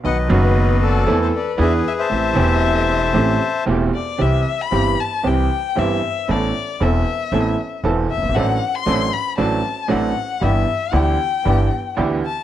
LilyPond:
<<
  \new Staff \with { instrumentName = "Violin" } { \time 4/4 \key a \minor \tempo 4 = 116 dis''8 b'4 a'8. a'16 b'8 b'8 e''16 e''16~ | e''2. r8 d''8 | \key c \major e''8. b''8. a''8 g''4 e''4 | d''4 e''2 r8 e''8 |
fis''8. c'''8. b''8 a''4 fis''4 | e''4 g''2 r8 a''8 | }
  \new Staff \with { instrumentName = "Bandoneon" } { \time 4/4 \key a \minor << { fis''8 dis''4 d''8. c''16 d''8 e''8 gis''16 a''16~ | a''2. r4 | \key c \major r1 | r1 |
r1 | r1 | } \\ { <b' dis''>8 <fis' b'>4 a'4. <gis' b'>8. <c'' e''>16~ | <c'' e''>2. r4 | r1 | r1 |
r1 | r1 | } >> }
  \new Staff \with { instrumentName = "String section" } { \time 4/4 \key a \minor <b dis' fis'>8 <b dis' fis'>4. <c' e' a'>8 r8 <d' e' gis'>8 r8 | <c' g' a'>8 <c' g' a'>4. <c' g' a'>8 r8 <c' g' a'>8 r8 | \key c \major <c' e' g'>8 r8 <c' e' g'>8 r8 <c' e' g'>8 r8 <c' e' g'>8 r8 | <b c' a'>8 r8 <b c' a'>8 r8 <b c' a'>8 r8 <b c' a'>8 r8 |
<c' d' fis'>8 r8 <c' d' fis'>8 r8 <c' d' fis'>8 r8 <c' d' fis'>8 r8 | <b e' g'>8 r8 <b e' g'>8 r8 <b e' g'>8 r8 <b e' g'>8 r8 | }
  \new Staff \with { instrumentName = "Grand piano" } { \clef bass \time 4/4 \key a \minor <b,, b, dis fis b fis'>8 <fis,, fis, dis fis b fis'>4. <e, e a c' a'>8 r8 <e, e b d' gis'>8 r8 | <a,, a, e a c' g'>8 <e,, e, e a c' g'>4. <a,, a, e a c' g'>8 r8 <e,, e, e a c' g'>8 r8 | \key c \major <c, c e g c' g'>8 r8 <g,, g, e g c' g'>8 r8 <c, c e g c' g'>8 r8 <g,, g, e g c' g'>8 r8 | <a,, a, e b c' a'>8 r8 <e,, e, e b c' a'>8 r8 <a,, a, e b c' a'>8 r8 <e,, e, e b c' a'>8 r32 fis,,32 g,,32 aes,,32 |
<a,, a, fis c' d' a'>8 r8 <a,, a, fis c' d' a'>8 r8 <a,, a, fis c' d' a'>8 r8 <a,, a, fis c' d' a'>8 r8 | <g,, g, e b d' g'>8 r8 <d, d e b d' g'>8 r8 <g,, g, e b d' g'>8 r8 <d, d e b d' g'>8 r8 | }
  \new Staff \with { instrumentName = "Upright bass" } { \clef bass \time 4/4 \key a \minor b,,16. r32 fis,,4~ fis,,16. r32 e,16. r8 r32 e,16. r8 r32 | a,,16. r32 e,,4~ e,,16. r32 a,,16. r8 r32 e,,16. r8 r32 | \key c \major c,16. r8 r32 g,,16. r8 r32 c,16. r8 r32 g,,16. r8 r32 | a,,16. r8 r32 e,,16. r8 r32 a,,16. r8 r32 e,,16. r16 fis,,32 g,,32 aes,,32 |
a,,16. r8 r32 a,,16. r8 r32 a,,16. r8 r32 a,,16. r8 r32 | g,,16. r8 r32 d,16. r8 r32 g,,16. r8 r32 d,16. r8 r32 | }
>>